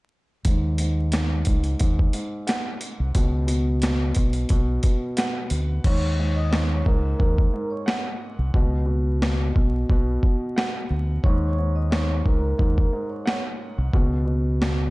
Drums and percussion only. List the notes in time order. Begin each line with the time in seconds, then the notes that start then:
0.45 kick, closed hi-hat
0.78 closed hi-hat
1.12 snare, closed hi-hat
1.45 kick, closed hi-hat
1.64 closed hi-hat
1.79 kick, closed hi-hat
1.99 kick
2.13 closed hi-hat
2.47 snare, closed hi-hat
2.81 closed hi-hat
3.15 kick, closed hi-hat
3.48 closed hi-hat
3.82 snare, closed hi-hat
4.15 kick, closed hi-hat
4.33 closed hi-hat
4.49 kick, closed hi-hat
4.83 kick, closed hi-hat
5.17 snare, closed hi-hat
5.50 closed hi-hat
5.84 kick, crash
6.53 snare
6.86 kick
7.20 kick
7.38 kick
7.88 snare
8.54 kick
9.22 snare
9.56 kick
9.90 kick
10.23 kick
10.58 snare
11.24 kick
11.92 snare
12.26 kick
12.59 kick
12.78 kick
13.27 snare
13.93 kick
14.62 snare